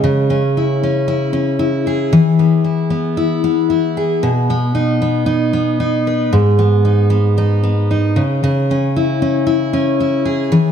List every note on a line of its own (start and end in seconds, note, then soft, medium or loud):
0.00 2.12 C#3 medium
0.00 0.41 G#3 medium
0.30 0.82 C#4 soft
0.57 1.07 E4 soft
0.83 1.32 C#4 soft
1.08 1.59 E4 medium
1.33 2.18 C#4 soft
1.59 2.64 E4 medium
1.87 3.97 G#4 medium
2.13 4.23 E3 medium
2.39 2.90 B3 soft
2.64 3.16 E4 soft
2.90 3.43 B3 soft
3.17 3.69 E4 medium
3.44 4.50 B3 soft
3.70 4.28 E4 soft
3.97 4.29 G#4 medium
4.23 6.32 B2 medium
4.50 5.01 B3 soft
4.75 5.26 D#4 soft
5.02 5.53 B3 soft
5.26 5.80 D#4 medium
5.53 6.38 B3 soft
5.80 6.38 D#4 soft
6.07 6.39 B4 medium
6.33 8.21 G#2 medium
6.59 7.09 B3 soft
6.85 7.36 D#4 soft
7.10 7.62 B3 soft
7.38 7.90 D#4 medium
7.63 8.21 B3 soft
7.91 8.22 D#4 soft
8.16 8.42 C#3 medium
8.44 10.51 C#3 medium
8.71 9.21 C#4 soft
8.96 9.46 E4 soft
9.22 9.72 C#4 soft
9.47 10.00 E4 medium
9.73 10.57 C#4 soft
10.00 10.72 E4 soft
10.25 10.72 G#4 soft
10.52 10.72 E3 medium